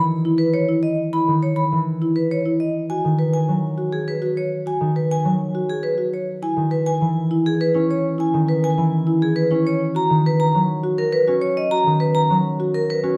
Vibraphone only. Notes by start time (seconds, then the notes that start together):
0.38 B4
0.53 C#5
0.83 D#5
1.13 B5
1.43 C#5
1.56 B5
2.16 B4
2.31 C#5
2.60 D#5
2.90 G#5
3.19 B4
3.34 G#5
3.93 G#4
4.08 B4
4.37 C#5
4.67 G#5
4.96 B4
5.11 G#5
5.70 G#4
5.83 B4
6.13 C#5
6.43 G#5
6.71 B4
6.86 G#5
7.46 G#4
7.61 B4
7.91 C#5
8.20 G#5
8.49 B4
8.64 G#5
9.22 G#4
9.36 B4
9.67 C#5
9.96 A#5
10.26 B4
10.40 A#5
10.98 A#4
11.12 B4
11.42 C#5
11.57 D#5
11.71 A#5
12.00 B4
12.15 A#5
12.74 A#4
12.90 B4